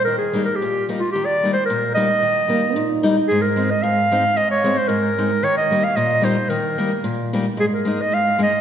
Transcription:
<<
  \new Staff \with { instrumentName = "Clarinet" } { \time 2/4 \key ees \major \tempo 4 = 112 bes'16 aes'8 bes'16 g'8 r16 f'16 | g'16 d''8 c''16 bes'8 ees''8~ | ees''4. r8 | \key aes \major aes'16 bes'8 ees''16 f''4 |
ees''16 des''8 c''16 bes'4 | des''16 ees''8 f''16 ees''8 c''8 | bes'4 r4 | aes'16 bes'8 ees''16 f''8 ees''8 | }
  \new Staff \with { instrumentName = "Euphonium" } { \time 2/4 \key ees \major r2 | r2 | r8 bes8 ees'4 | \key aes \major r2 |
r2 | r2 | r2 | r2 | }
  \new Staff \with { instrumentName = "Steel-string acoustic guitar" } { \time 2/4 \key ees \major << { r8 <g bes ees'>8 r8 <g bes ees'>8 | r8 <g bes ees'>8 r8 <g bes ees'>8 | r8 <g bes ees'>8 r8 <g bes ees'>8 | \key aes \major r8 <aes c' ees'>8 r8 <aes c' ees'>8 |
r8 <aes c' ees'>8 r8 <aes c' ees'>8 | r8 <g bes ees'>8 r8 <g bes ees'>8 | r8 <g bes ees'>8 r8 <g bes ees'>8 | r8 <aes bes ees'>8 r8 <aes bes ees'>8 | } \\ { ees4 bes,4 | ees4 bes,4 | ees4 bes,4 | aes,4 aes,4 |
aes,4 aes,4 | ees4 bes,4 | ees4 bes,4 | aes,4 aes,4 | } >> }
>>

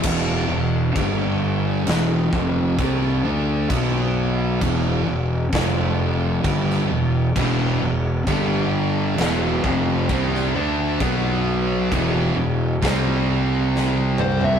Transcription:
<<
  \new Staff \with { instrumentName = "Lead electric guitar" } { \time 4/4 \key e \phrygian \tempo 4 = 66 r1 | r1 | r1 | r2. r8 c''16 e''16 | }
  \new Staff \with { instrumentName = "Distorted electric guitar" } { \clef bass \time 4/4 \key e \phrygian <e, b, e>8 <e, b,>8 <g, d g>4 <e, b, e>8 <f, c f>8 <c g c'>8 <d a d'>8 | <b, fis b>4 <e, b, e>8 <e, b,>8 <f, c f>4 <g, d g>8 <e, b,>8 | <e, b, e>8 <e, b,>8 <g, d g>4 <e, b, e>8 <f, c f>8 <c g c'>8 <d a d'>8 | <b, fis b>4 <e, b, e>8 <e, b,>8 <c g c'>2 | }
  \new Staff \with { instrumentName = "Distorted electric guitar" } { \clef bass \time 4/4 \key e \phrygian <e, b, e>8 <e, b,>8 <g, d g>4 <e, b, e>8 <f, c f>8 <c g c'>8 <d a d'>8 | <b, fis b>4 <e, b, e>8 <e, b,>8 <f, c f>4 <g, d g>8 <e, b,>8 | <e, b, e>8 <e, b,>8 <g, d g>4 <e, b, e>8 <f, c f>8 <c g c'>8 <d a d'>8 | <b, fis b>4 <e, b, e>8 <e, b,>8 <c g c'>2 | }
  \new Staff \with { instrumentName = "Distorted electric guitar" } { \clef bass \time 4/4 \key e \phrygian r1 | r1 | <e, b, e>8 <e, b,>8 <g, d g>4 <e, b, e>8 <f, c f>8 <c g c'>8 <d a d'>8 | <b, fis b>4 <e, b, e>8 <e, b,>8 <c g c'>2 | }
  \new Staff \with { instrumentName = "Fingered electric bass" } { \clef bass \time 4/4 \key e \phrygian e,,8 e,,8 g,,4 e,,8 f,,8 c,8 d,8 | b,,4 e,,8 e,,8 f,,4 g,,8 e,,8 | e,,8 e,,8 g,,4 e,,8 f,,8 c,8 d,8 | b,,4 e,,8 e,,8 c,2 | }
  \new DrumStaff \with { instrumentName = "Drums" } \drummode { \time 4/4 <cymc bd>4 <cymc bd>4 <cymc sn>8 bd8 <cymc bd>4 | <cymc bd>4 <cymc bd>4 <cymc bd sn>4 <cymc bd>16 sn8. | <cymc bd>4 <cymc bd>4 <cymc sn>8 bd8 <cymc bd>16 sn8. | <cymc bd>4 <cymc bd>4 <cymc bd sn>4 sn8 toml16 tomfh16 | }
>>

